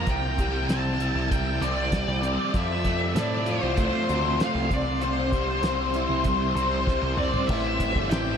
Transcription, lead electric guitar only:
Already playing: A#5
0.10 G5
0.70 A5
1.31 G5
1.62 D5
2.56 E5
3.18 D5
3.51 C5
3.80 C5
4.43 F5
4.74 D5
5.02 C5
6.56 C5
7.18 D5
7.47 E5
8.10 G5

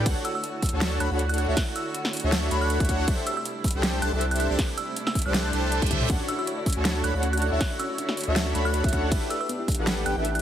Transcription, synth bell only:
0.25 E6
0.35 E6
1.00 F#6
1.29 F#6
1.38 F#6
1.57 F#6
1.76 E6
2.61 F#6
3.27 E6
3.37 E6
4.02 F#6
4.31 F#6
4.40 F#6
4.78 E6
5.07 E6
5.15 E6
5.26 F#6
6.28 E6
6.39 E6
7.04 F#6
7.33 F#6
7.42 F#6
7.61 F#6
7.79 E6
8.65 F#6
9.30 E6
9.41 E6
10.06 F#6
10.35 F#6

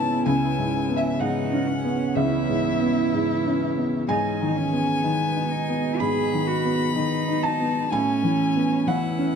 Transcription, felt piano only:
Already playing: C#2 G#2 B3 C#4 G#5 A5 B5
0.26 C#2 G#5
0.58 G#2
0.89 B3
0.96 E5
1.20 G#2 F#5
1.53 C#4
1.84 B3
2.16 C#2 E5
2.49 G#2
2.82 B3
3.14 G#2
3.46 C#4
3.77 B3
4.08 G#2 G#5
4.41 D#3
4.73 B3
5.04 D#3
5.37 D#4
5.69 B3
6.00 G#2 B5
6.33 D#3
6.65 B3
6.96 D#3
7.28 D#4
7.43 A5
7.60 B3
7.92 A2 G#5
8.23 E3
8.56 B3
8.87 E3 F#5
9.18 C#4

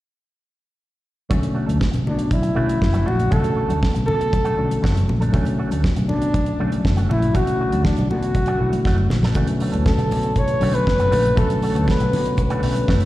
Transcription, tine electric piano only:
1.31 D3 F#3 A3 C#4
2.56 D3 F#3 A3 C#4
3.31 D3 F#3 A3 C#4
4.57 D3 F#3 A3 C#4
5.32 D3 F#3 A3 C#4
6.59 D3 F#3 A3 C#4
7.34 D3 F#3 A3 C#4
8.59 D3 F#3 A3 E4
9.35 D3 F#3 A3 C#4
10.59 D3 F#3 A3 C#4
11.35 D3 F#3 A3 C#4
12.62 D3 F#3 A3 C#4

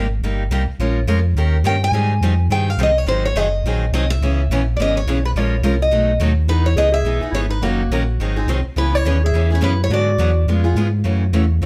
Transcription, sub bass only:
Already playing: G#1
0.22 G1
0.50 C2
0.68 C2
0.79 A#1
1.07 F2
1.35 D#2
1.63 G2
1.92 G#2
2.21 F2
2.50 G2
2.78 C2
3.06 G#1
3.34 F#1
3.63 A#1
3.92 C2
4.21 C#2
4.49 A#1
4.78 G#1
5.06 B1
5.35 A#1
5.62 C2
5.91 B1
6.19 D#2
6.48 E2
6.76 C#2
7.04 B1
7.21 B1
7.32 G#1
7.60 F#1
7.90 A#1
8.19 G#1
8.47 C2
8.64 C2
8.76 C#2
9.05 D#2
9.32 E2
9.62 F#2
9.90 G#2
10.18 E2
10.47 F2
10.75 G#2
11.04 F#2
11.32 E2
11.61 D#2

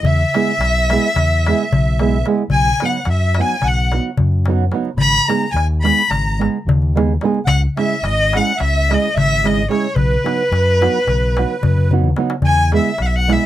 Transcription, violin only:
0.06 E5
2.52 G#5
2.85 F#5
3.11 E5
3.41 G#5
3.68 F#5
5.00 B5
5.28 A#5
5.52 G#5
5.83 B5
6.10 A#5
7.47 F#5
7.78 E5
8.06 D#5
8.36 F#5
8.63 E5
8.94 D#5
9.19 E5
9.47 D#5
9.71 C#5
9.96 B4
12.46 G#5
12.76 E5
13.02 F#5
13.06 E5
13.16 F#5
13.32 E5

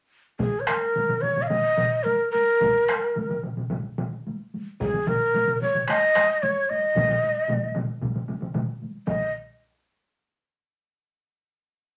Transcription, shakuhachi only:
0.40 G#4
0.60 C#5
0.67 A#4
1.21 C#5
1.42 F5
1.47 D#5
2.04 A#4
2.31 A#4
4.82 G#4
5.08 A#4
5.62 C#5
5.89 D#5
6.43 C#5
6.70 D#5
9.08 D#5

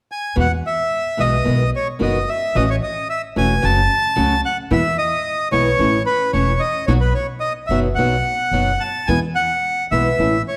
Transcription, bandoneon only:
0.12 G#5
0.40 F#5
0.67 E5
1.20 D#5
1.76 C#5
2.02 D#5
2.29 E5
2.56 D#5
2.70 C#5
2.83 D#5
3.10 E5
3.38 G#5
3.64 A5
4.45 F#5
4.72 E5
4.98 D#5
5.52 C#5
6.06 B4
6.33 C#5
6.60 D#5
6.87 C#5
7.01 B4
7.14 C#5
7.40 D#5
7.67 E5
7.95 F#5
8.80 A5
9.07 G#5
9.35 F#5
9.91 E5
10.48 C#5

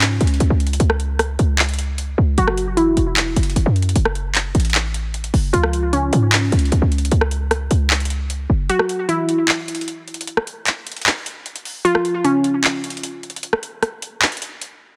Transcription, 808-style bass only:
Already playing: G#2
0.21 C#2
0.40 C#2
0.50 C#2
0.80 C#2
1.39 C#2
2.18 C#2
2.38 F#1
2.97 E1
3.36 F#1
3.56 F#1
3.66 F#2
3.96 F#1
4.55 A1
5.34 F#1
5.53 C#2
6.13 G#2
6.52 C#2
6.72 C#2
6.82 C#2
7.12 C#2
7.71 C#2
8.50 F#1

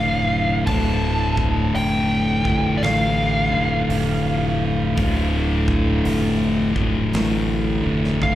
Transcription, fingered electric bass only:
Already playing: F1
0.67 D1
1.74 F1
2.82 A1
3.51 F1
3.88 F1
4.97 D1
6.05 F1
7.14 A1
7.84 F1
8.22 F1

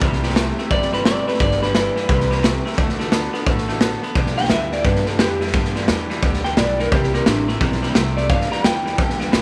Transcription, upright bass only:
0.01 C2
0.71 G1
1.40 G1
2.09 C2
2.78 D2
3.46 A1
4.15 B1
4.51 D2
4.85 G2
5.19 F2
5.54 G2
5.89 E2
6.23 D2
6.57 B1
6.92 C2
7.26 A1
7.61 B1
7.95 C2
8.30 G2
8.51 muted upright bass stroke
8.64 E2
8.98 D2
9.33 C#2

